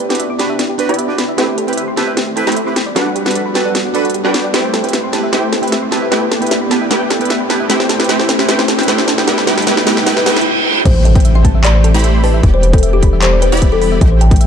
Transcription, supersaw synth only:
0.00 0.87 B3 medium
0.00 0.87 E4 medium
0.00 0.87 G4 medium
0.00 0.87 D5 medium
0.00 0.87 G5 medium
0.89 1.36 B3 medium
0.89 1.36 E4 medium
0.89 1.36 G4 medium
0.89 1.36 D5 medium
0.89 1.36 B5 loud
1.38 2.45 A3 medium
1.38 2.45 E4 medium
1.38 2.45 G4 medium
1.38 2.45 C5 medium
1.38 2.45 G5 medium
2.47 2.75 A3 medium
2.47 2.75 E4 medium
2.47 2.75 G4 medium
2.47 2.75 C5 medium
2.47 2.75 B5 loud
2.96 4.02 G3 medium
2.96 4.02 D4 medium
2.96 4.02 F#4 medium
2.96 4.02 B4 medium
2.96 4.02 F#5 medium
4.25 4.52 G3 medium
4.25 4.52 D4 medium
4.25 4.52 F#4 medium
4.25 4.52 B4 medium
4.25 4.52 G5 medium
4.54 5.31 A3 medium
4.54 5.31 E4 medium
4.54 5.31 G4 medium
4.54 5.31 C5 medium
4.54 5.31 G5 medium
5.33 6.10 A3 medium
5.33 6.10 E4 medium
5.33 6.10 G4 medium
5.33 6.10 C5 medium
5.33 6.10 G5 medium
6.12 6.89 A3 medium
6.12 6.89 E4 medium
6.12 6.89 G4 medium
6.12 6.89 B4 medium
6.12 6.89 G5 medium
6.91 7.68 A3 medium
6.91 7.68 E4 medium
6.91 7.68 G4 medium
6.91 7.68 B4 medium
6.91 7.68 G5 medium
7.70 8.08 A3 medium
7.70 8.08 E4 medium
7.70 8.08 G4 medium
7.70 8.08 C5 medium
7.70 8.08 G5 medium
8.09 8.47 A3 medium
8.09 8.47 E4 medium
8.09 8.47 G4 medium
8.09 8.47 C5 medium
8.09 8.47 G5 medium
8.48 8.87 A3 medium
8.48 8.87 E4 medium
8.48 8.87 G4 medium
8.48 8.87 C5 medium
8.48 8.87 G5 medium
8.88 9.26 A3 medium
8.88 9.26 E4 medium
8.88 9.26 G4 medium
8.88 9.26 C5 medium
8.88 9.26 G5 medium
9.27 9.46 A3 medium
9.27 9.46 E4 medium
9.27 9.46 G4 medium
9.27 9.46 B4 medium
9.27 9.46 G5 medium
9.47 9.65 A3 medium
9.47 9.65 E4 medium
9.47 9.65 G4 medium
9.47 9.65 B4 medium
9.47 9.65 G5 medium
9.67 9.85 A3 medium
9.67 9.85 E4 medium
9.67 9.85 G4 medium
9.67 9.85 B4 medium
9.67 9.85 G5 medium
9.87 10.05 A3 medium
9.87 10.05 E4 medium
9.87 10.05 G4 medium
9.87 10.05 B4 medium
9.87 10.05 G5 medium
10.06 10.25 A3 medium
10.06 10.25 E4 medium
10.06 10.25 G4 medium
10.06 10.25 B4 medium
10.06 10.25 G5 medium
10.26 10.44 A3 medium
10.26 10.44 E4 medium
10.26 10.44 G4 medium
10.26 10.44 B4 medium
10.26 10.44 G5 medium
10.85 11.92 A3 medium
10.85 11.92 E4 medium
10.85 11.92 G4 medium
10.85 11.92 C5 medium
10.85 11.92 G5 medium
11.94 12.41 A3 medium
11.94 12.41 E4 medium
11.94 12.41 G4 medium
11.94 12.41 C5 medium
11.94 12.41 B5 loud
12.43 13.50 B3 medium
12.43 13.50 E4 medium
12.43 13.50 G4 medium
12.43 13.50 D5 medium
12.43 13.50 G5 medium
13.52 13.99 B3 medium
13.52 13.99 E4 medium
13.52 13.99 G4 medium
13.52 13.99 D5 medium
13.52 13.99 B5 loud
14.01 14.47 A3 medium
14.01 14.47 E4 medium
14.01 14.47 G4 medium
14.01 14.47 G5 medium

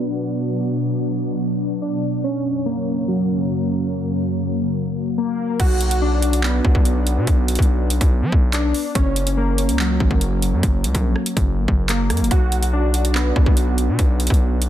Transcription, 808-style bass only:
5.60 6.61 B1 loud
6.65 6.74 B1 loud
6.75 7.18 B1 loud
7.17 7.27 B2 loud
7.27 7.58 B1 loud
7.59 7.99 B1 loud
8.01 8.23 B1 loud
8.22 8.32 F#3 loud
8.32 8.73 B1 loud
8.95 9.70 F#1 loud
9.69 9.99 C#2 loud
10.00 10.10 F#1 loud
10.11 10.54 F#1 loud
10.53 10.63 F#2 loud
10.63 10.86 F#1 loud
10.84 10.94 C#2 loud
10.95 11.15 A#1 loud
11.37 11.59 F#1 loud
11.58 11.68 G1 loud
11.68 12.12 F#1 loud
12.10 12.22 F#2 loud
12.21 12.30 F#1 loud
12.31 13.32 B1 loud
13.36 13.46 B1 loud
13.46 13.90 B1 loud
13.88 13.98 B2 medium
13.99 14.29 B1 loud
14.30 14.69 B1 loud

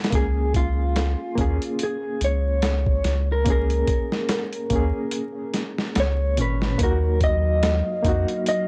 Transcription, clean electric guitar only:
0.15 0.56 G#4 medium
0.56 1.84 F4 medium
1.83 2.21 G#4 medium
2.24 3.32 C#5 medium
3.32 3.49 A#4 medium
3.52 6.00 A#4 medium
6.00 6.41 C#5 medium
6.42 6.83 B4 medium
6.83 7.20 A#4 medium
7.24 8.47 D#5 loud
8.48 8.68 D#5 medium

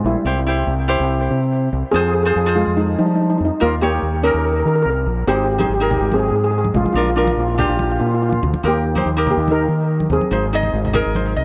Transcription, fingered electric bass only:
0.04 0.14 A#1 medium
0.25 0.63 C2 loud
0.67 0.96 C2 loud
1.00 1.27 C2 medium
1.31 1.68 C3 medium
1.73 1.82 C2 loud
1.94 2.31 F2 loud
2.36 2.64 F2 medium
2.67 2.95 F2 medium
2.99 3.36 F3 medium
3.40 3.50 F2 medium
3.62 3.99 D#2 loud
4.02 4.31 D#2 medium
4.34 4.62 D#2 medium
4.65 4.84 D#3 medium
4.85 5.05 C2 medium
5.06 5.26 A#1 medium
5.27 5.65 G#1 loud
5.69 5.98 G#1 medium
6.00 6.29 G#1 medium
6.31 6.70 G#2 medium
6.74 6.84 A1 medium
6.94 7.33 A#1 loud
7.37 7.66 A#1 medium
7.69 7.97 A#1 medium
8.01 8.38 A#2 medium
8.43 8.52 D2 medium
8.64 9.01 D#2 loud
9.06 9.34 D#2 medium
9.37 9.65 D#2 medium
9.68 10.06 D#3 medium
10.10 10.20 D#2 medium
10.31 10.69 G#1 loud
10.73 11.02 G#1 medium
11.06 11.34 G#1 medium
11.37 11.45 C2 medium

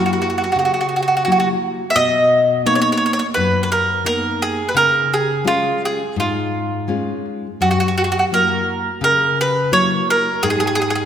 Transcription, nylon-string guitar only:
0.00 0.44 F#3 soft
0.00 0.45 A#3 soft
0.00 0.45 E4 soft
0.56 1.24 C#3 medium
1.27 1.82 F#3 soft
1.27 1.83 A#3 soft
1.27 1.83 E4 soft
1.96 2.63 B2 medium
2.66 3.21 A#3 soft
2.66 3.21 B3 soft
2.66 3.21 D#4 soft
3.37 4.04 F#2 medium
4.04 4.61 A#3 soft
4.04 4.61 B3 soft
4.04 4.61 D#4 soft
4.75 5.43 C#3 medium
5.44 6.02 G#3 soft
5.44 6.02 C#4 soft
5.44 6.02 F4 soft
6.16 6.86 G#2 medium
6.88 7.46 G#3 soft
6.88 7.46 C#4 soft
6.88 7.46 F4 soft
7.61 8.29 F#2 soft
8.32 8.88 F#3 soft
8.32 8.89 A#3 soft
8.32 8.89 E4 soft
9.01 9.70 C#3 soft
9.71 10.28 F#3 soft
9.71 10.28 A#3 soft
9.71 10.28 E4 soft
10.43 11.05 G#2 medium

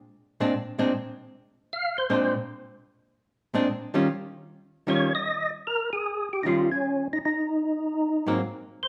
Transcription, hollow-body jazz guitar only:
0.40 0.52 A#2 medium
0.40 0.53 G#3 medium
0.40 0.53 C4 medium
0.40 0.53 D4 medium
0.79 0.91 A#2 medium
0.79 0.91 G#3 medium
0.79 0.92 C4 medium
0.79 0.91 D4 medium
2.10 2.33 A#2 medium
2.10 2.33 G#3 medium
2.10 2.34 C4 medium
2.10 2.34 D4 medium
3.54 3.67 A#2 medium
3.54 3.67 G#3 medium
3.54 3.67 C4 medium
3.54 3.68 D4 medium
3.94 4.06 D#3 medium
3.94 4.07 G3 medium
3.94 4.07 C#4 medium
3.94 4.07 F4 medium
4.87 5.10 D#3 medium
4.87 5.10 G3 medium
4.87 5.10 C#4 medium
4.87 5.10 F4 medium
6.45 6.68 D#3 soft
6.45 6.68 G3 soft
6.45 6.69 C#4 soft
6.45 6.68 F4 medium
8.27 8.40 G#2 medium
8.27 8.40 F#3 medium
8.27 8.40 A#3 medium
8.27 8.40 C4 medium

